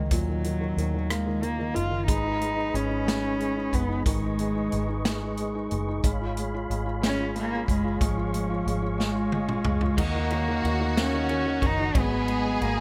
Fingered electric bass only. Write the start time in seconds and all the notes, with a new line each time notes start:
0.11 D#2
0.77 D#2
1.76 F#1
2.09 G#1
2.74 G#1
3.73 F#1
4.06 G#1
4.73 G#1
5.72 F#1
6.04 G#1
6.70 G#1
7.68 F#1
8.01 G#1
8.66 G#1
9.65 C#2
9.98 D#2
10.64 D#2
11.62 F#1
11.95 G#1
12.61 G#1